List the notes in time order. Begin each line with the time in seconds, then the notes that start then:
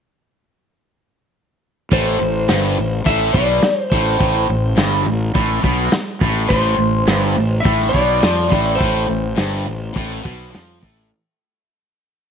1.91 A1 A2 C5, kick, open hi-hat
2.21 A1 A2
2.48 G1 G2, snare, open hi-hat
2.78 A1 A2
3.04 A1 A2 E5, kick, open hi-hat
3.33 B1 B2 D5, kick
3.62 muted overdriven electric guitar stroke, muted distorted electric guitar stroke, muted fingered electric bass stroke, snare, open hi-hat
3.80 C5
3.90 A1 A2 C5, kick
4.19 A1 A2, kick, open hi-hat
4.49 A1 A2
4.76 G1 G2, snare, open hi-hat
5.05 A1 A2
5.34 A1 A2, kick, open hi-hat
5.63 B1 B2, kick
5.92 muted overdriven electric guitar stroke, muted fingered electric bass stroke, muted distorted electric guitar stroke, snare, open hi-hat
6.21 A1 A2, kick
6.49 A1 A2 C5, kick, open hi-hat
6.78 A1 A2
7.07 G1 G2, snare, open hi-hat
7.36 A1 A2
7.60 A2 E5
7.65 A1, kick, open hi-hat
7.81 snare
7.89 B2 D5
7.94 B1, kick
8.21 F2 F3, snare, open hi-hat
8.49 A1 A2, kick
8.75 A2 C5
8.80 A1, kick, open hi-hat
9.08 A1 A2
9.36 G1 G2, snare, open hi-hat
9.65 A1 A2
9.93 A1 A2, kick, open hi-hat
10.23 B1 B2, kick
10.51 F2 F3, snare, open hi-hat
10.80 A1 A2, kick